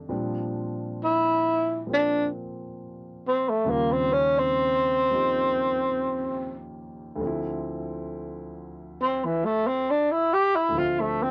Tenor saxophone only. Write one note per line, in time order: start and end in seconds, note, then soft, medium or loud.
1.04 1.87 E4 medium
1.94 2.27 D4 medium
3.28 3.51 C4 medium
3.49 3.71 A3 medium
3.70 3.93 A#3 medium
3.92 4.14 C4 medium
4.13 4.40 C#4 medium
4.39 6.60 C4 medium
9.02 9.27 C4 medium
9.25 9.47 E3 medium
9.45 9.69 A3 medium
9.67 9.92 C4 medium
9.90 10.13 D4 medium
10.12 10.35 E4 medium
10.34 10.57 G4 medium
10.55 10.80 E4 medium
10.78 11.02 F4 medium
11.00 11.24 A3 medium
11.23 11.31 C4 medium